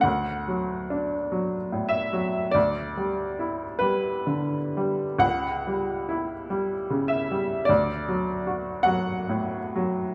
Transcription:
X:1
M:4/4
L:1/8
Q:1/4=48
K:D
V:1 name="Upright piano"
f3 e d2 B2 | f3 e d2 f2 |]
V:2 name="Upright piano" clef=bass
(3D,, F, D (3F, A,, F, (3D,, G, E (3G, D, G, | (3C,, G, E (3G, C, G, (3D,, F, F (3F, A,, F, |]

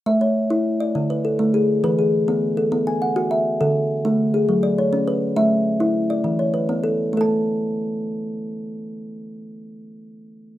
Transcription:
X:1
M:12/8
L:1/8
Q:3/8=136
K:A
V:1 name="Kalimba"
e c3 z d2 B A2 G2 | B G3 z A2 g f2 e2 | A3 z2 G2 d c2 B2 | e3 z2 d2 c B2 A2- |
A z8 z3 | z12 |]
V:2 name="Kalimba"
A,2 z E2 z D,2 z A,2 z | E,2 z B,2 z B,2 z F2 z | D,2 z A,2 z F,2 z C2 z | A,2 z E2 z E,2 z B,2 z |
[A,Aa]12- | [A,Aa]12 |]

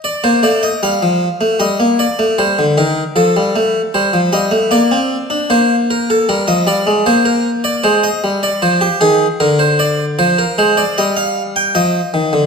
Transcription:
X:1
M:4/4
L:1/16
Q:1/4=77
K:Eb
V:1 name="Harpsichord"
d c d e f4 e2 d2 c2 B2 | =A4 c2 e2 d4 c2 B A | B e d2 c B2 d c e2 d c G A2 | B c d2 c B c d e f2 g e4 |]
V:2 name="Harpsichord" clef=bass
z B, =A,2 G, F,2 A, G, B,2 A, G, D, E,2 | F, G, =A,2 G, F, G, A, B, C2 D B,4 | G, F, G, A, B,4 A,2 G,2 F,2 E,2 | D,4 F,2 A,2 G,4 F,2 E, D, |]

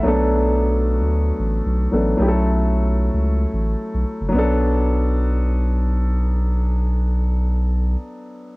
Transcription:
X:1
M:4/4
L:1/16
Q:1/4=112
K:Bm
V:1 name="Grand piano"
[F,A,B,DA]12- [F,A,B,DA]2 [F,A,B,DA]2 | [F,A,CEGA]16 | [F,B,DA]16- | [F,B,DA]16 |]
V:2 name="Sub bass" clef=bass
B,,,6- B,,, D,,3 A,,,2 B,,,2 A,,,2 | B,,,6- B,,, C,,3 A,,,2 z B,,, z F,,, | B,,,16- | B,,,16 |]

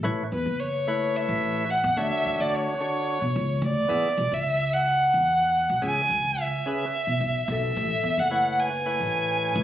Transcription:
X:1
M:7/8
L:1/16
Q:1/4=109
K:A
V:1 name="Violin"
z2 B2 c4 e4 f2 | e3 d c8 d2- | d3 e3 f8 | g4 e8 e2- |
e3 f3 g8 |]
V:2 name="Vibraphone"
z12 z2 | z12 z2 | z12 z2 | z12 A2- |
A3 A3 B8 |]
V:3 name="Tonewheel organ"
[A,EBc]2 z4 [A,EBc]6 z2 | [D,DFc]6 [D,DFc]2 z6 | [E,B,Ge]2 z12 | [C,CGe]2 z4 [C,CGB]2 z6 |
z4 [A,EBc]2 z2 [A,EBc]6 |]
V:4 name="Upright bass" clef=bass
A,,, z E,, F,,,6 A,,,4 E,, | D,, z D,, D,,2 z4 B,, C,,2 D,,2 | E,, z B,,, C,,6 E,,4 B,,, | C,, z C,, C,,2 z4 B,, B,,,2 B,,,2 |
A,,, z E,, F,,,6 A,,,4 C,, |]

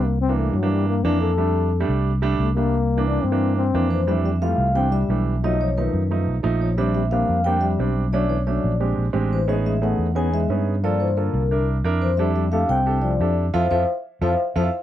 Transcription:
X:1
M:4/4
L:1/16
Q:1/4=178
K:F
V:1 name="Vibraphone"
z16 | z16 | z12 z2 c2 | e2 e2 f4 g2 e4 z2 |
^d2 _d2 =B6 z4 d2 | e2 e2 f4 g2 e4 z2 | d2 ^c2 d6 z4 =c2 | e2 e2 _g4 ^g2 e4 z2 |
d2 c2 B6 z4 c2 | e2 e2 f2 g4 d4 z2 | [cef]2 [cef]2 z4 [cef]2 z2 [cef]2 z2 |]
V:2 name="Grand piano"
z3 [E,B,D]3 z [E,B,D]3 z2 [E,B,D]3 z | [G,A,D]4 z [G,A,D]3 z2 [G,A,D]3 z [G,A,D]2 | z3 [E,B,D]3 z [E,B,D]3 z2 [E,B,D]3 z | [E,G,A,D]3 z [E,G,A,F]3 z [E,G,A,D]3 z [E,G,A,D]3 z |
[^E,A,^D]3 z [E,A,D]3 z [E,A,D]3 z [E,A,D]3 z | [G,CD]3 z [G,CD]3 z [G,CD]3 z [G,CD]3 z | [A,^CD]3 z [A,CD]3 z [_A,=CDG]3 z [A,CDG]3 z | [=B,^C^D^G]3 z [B,CDG]3 z [B,CDG]3 z [B,CDG]3 z |
[B,FA]3 z [B,FA]3 z [DEB]3 z [DEB]3 z | [DEGA]3 z [DEGA]3 z [DEGA]3 z [DEGA]3 z | [EFA]2 [EFA]2 z4 [EFA]2 z2 [EFA]2 z2 |]
V:3 name="Trombone" clef=bass
B,2 C2 A,2 _G,2 =G,2 B,2 D2 A2- | A8 z4 A,2 B,2- | B,4 D2 C4 C4 E,2 | G,2 G,2 A,4 C2 G,4 z2 |
^F,2 ^E,2 ^D,6 z4 E,2 | G,2 G,2 B,4 B,2 G,4 z2 | ^F,2 E,2 F,4 z6 E,2 | ^G,2 G,2 A,4 =B,2 G,4 z2 |
F,2 E,2 D,6 z4 E,2 | G,2 G,2 A,2 C4 F,4 z2 | F,2 F,2 z4 F,2 z2 F,2 z2 |]
V:4 name="Fingered electric bass" clef=bass
C,,6 G,,6 F,,4- | F,,6 C,,6 C,,4- | C,,6 G,,6 F,,4- | F,,6 C,,6 =B,,,4- |
=B,,,6 ^F,,4 B,,,2 _B,,,4- | B,,,6 F,,6 =B,,,4- | =B,,,6 _B,,,4 B,,,2 A,,,4- | A,,,6 E,,6 G,,4- |
G,,6 C,,6 F,,4- | F,,6 C,,6 F,,4 | F,,2 F,,2 z4 F,,2 z2 F,,2 z2 |]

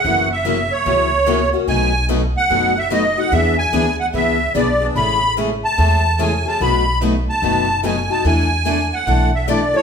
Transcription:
X:1
M:4/4
L:1/16
Q:"Swing" 1/4=146
K:Bdor
V:1 name="Accordion"
f2 e4 c8 z2 | g4 z2 f4 e2 ^d2 f2 | e2 g4 f2 e4 d3 z | b4 z2 a6 g2 a2 |
b4 z2 a6 g2 a2 | g6 f4 e2 d2 c2 |]
V:2 name="Steel-string acoustic guitar"
[F,CE^A]2 z2 [F,CEA]2 z2 [F,CEA]2 z2 [F,CEA]2 z2 | [B,,F,A,^DFB]2 z2 [B,,F,A,DFB]2 z2 [B,,F,A,DFB]2 z2 [B,,F,A,DFB]2 z2 | [E,B,DGB]2 z2 [E,B,DGB]2 z2 [E,B,DGB]2 z2 [E,B,DGB]2 z2 | [E,G,CEA]2 z2 [E,G,CEA]2 z2 [E,G,CEA]2 z2 [E,G,CEA]2 z2 |
[B,,F,A,^DFB]2 z2 [B,,F,A,DFB]2 z2 [B,,F,A,DFB]2 z2 [B,,F,A,DFB]2 z2 | [E,A,DEA]2 z2 [E,A,DEA]2 z2 [E,A,DEA]2 z2 [E,A,DEA]2 z2 |]
V:3 name="Steel-string acoustic guitar"
[C,E,^A,CF]2 z2 [C,E,A,CF]2 z2 [C,E,A,CF]2 z2 [C,E,A,CF]2 [A,CF]2 | [B,,F,A,^DF]2 z2 [B,,F,A,DF]2 z2 [B,,F,A,DF]2 z2 [B,,F,A,DF]2 [A,DF]2 | [E,B,DG]2 z2 [E,B,DG]2 z2 [E,B,DG]2 z2 [E,B,DG]2 [B,DG]2 | [C,E,A,CG]2 z2 [C,E,A,CG]2 z2 [C,E,A,CG]2 z2 [C,E,A,CG]2 [A,CG]2 |
[B,,F,A,^DF]2 z2 [B,,F,A,DF]2 z2 [B,,F,A,DF]2 z2 [B,,F,A,DF]2 [A,DF]2 | [E,A,DEA]2 z2 [E,A,DEA]2 z2 [E,A,DEA]2 z2 [E,A,DEA]2 [DEA]2 |]
V:4 name="Upright bass" clef=bass
F,,,8 C,,8 | B,,,8 F,,,8 | E,,4 D,,4 C,,4 B,,,4 | A,,,8 E,,8 |
B,,,8 F,,,8 | E,,8 B,,,8 |]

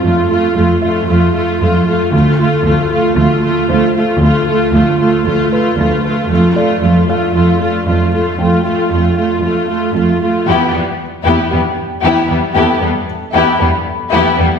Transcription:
X:1
M:4/4
L:1/8
Q:1/4=115
K:Ephr
V:1 name="Felt piano"
[Cc]3 e4- e- | e z4 z c2- | c4 z B3- | B d2 f4- f |
g6 z2 | z4 [Gg]4 | [Aa]4 b4 |]
V:2 name="Violin section"
z8 | z8 | z8 | z8 |
z8 | G B, z G B, z G B, | G B, z G B, z G B, |]
V:3 name="Violin section"
z8 | z8 | z8 | z8 |
z8 | E G, z E G, z E G, | E G, z E G, z E G, |]
V:4 name="Viola section"
[A,F] [A,F] [A,F] [A,F] [A,F] [A,F] [A,F] [A,F] | [A,F] [A,F] [A,F] [A,F] [A,F] [A,F] [A,F] [A,F] | [A,F] [A,F] [A,F] [A,F] [A,F] [A,F] [A,F] [A,F] | [A,F] [A,F] [A,F] [A,F] [A,F] [A,F] [A,F] [A,F] |
[A,F] [A,F] [A,F] [A,F] [A,F] [A,F] [A,F] [A,F] | B, B, z B, B, z B, B, | B, B, z B, B, z B, B, |]
V:5 name="Cello section" clef=bass
F,,2 F,,2 F,,2 F,,2 | D,,2 D,,2 D,,2 D,,2 | D,,2 D,,2 D,,2 D,,2 | F,,2 F,,2 F,,2 F,,2 |
F,,2 F,,2 F,,2 F,,2 | E,, E,, z E,, E,, z E,, E,, | E,, E,, z E,, E,, z E,, E,, |]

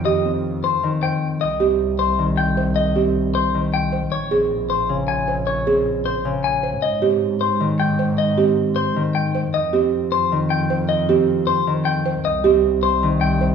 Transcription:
X:1
M:7/8
L:1/8
Q:1/4=155
K:Cphr
V:1 name="Clean electric guitar"
e z2 c z g z | e z2 c z g z | e z2 c z g z | d z2 c z a z |
d z2 c z a z | e z2 c z g z | e z2 c z g z | e z2 c z g z |
e z2 c z g z | e z2 c z g z |]
V:2 name="Marimba"
G z4 c z | z G z4 c | z G z4 c | z A z4 c |
z A z4 c | z G z4 c | z G z4 c | z G z4 c |
z G z4 c | z G z4 c |]
V:3 name="Harp" clef=bass
[E,C] C3 E,3 | z C3 E,3- | E, C3 E,3 | z C3 D,3- |
D, C3 D,3 | z C3 E,3- | E, C3 E,3 | z C3 E,3- |
E, C3 E,3 | z C3 E,3 |]
V:4 name="Double bass" clef=bass
F,,6- F,, | C,,6- C,,- | C,,6- C,, | B,,,6- B,,,- |
B,,,6- B,,, | A,,6- A,,- | A,,6- A,, | F,,6- F,,- |
F,,6- F,, | C,,6- C,, |]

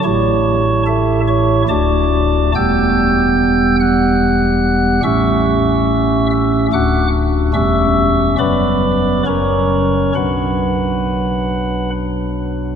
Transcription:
X:1
M:3/4
L:1/8
Q:1/4=71
K:Bm
V:1 name="Pipe organ"
[cac']2 [Aea] [cc'] [dad']2 | [ge'g']3 [ff']3 | [ec'e']3 [ee'] [fd'f'] z | [ec'e']2 [dbd']2 [c^ac']2 |
[Bfb]4 z2 |]
V:2 name="Pipe organ" clef=bass
[A,,,A,,A,EG]4 [D,,,D,,A,DF]2 | [E,,,E,,G,B,G]6 | [A,,,A,,A,CG]4 [D,,,D,,A,DF]2 | [E,,,E,,G,CG]2 [F,,,F,,F,B,B]2 [F,,,F,,F,C^A]2 |
[B,,,B,,F,D]6 |]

